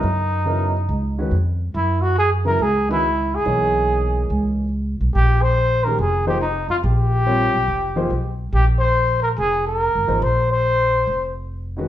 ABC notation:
X:1
M:4/4
L:1/8
Q:"Swing" 1/4=142
K:Bbdor
V:1 name="Trumpet"
E4- E z3 | _F _G A B A F2 A- | A4- A z3 | G c2 B A G E F |
G6- G z | G c2 B A B3 | c c4 z3 |]
V:2 name="Grand piano"
z2 [D,_G,_C_FB] z2 [E,A,D_G_c] z2 | z3 [D,_G,_C_FB] z [E,A,D_G_c] z2 | [_F,B,EAd]4- [F,B,EAd] z3 | z3 [E,A,DGB] z [F,B,EAc] z2 |
z2 [G,CFBd] z2 [F,B,EAc] z2 | z6 z [F,B,EAc] | z6 z [E,A,D_G_c] |]
V:3 name="Upright bass" clef=bass
_G,,4 D,,2 F,,2 | _G,,4 D,,4 | _C,,4 D,,3 C,, | B,,,4 F,,,3 F,, |
B,,,3 _C,, F,,,2 C,,2 | B,,,4 F,,,2- (3F,,, G,,, A,,, | B,,,4 F,,,4 |]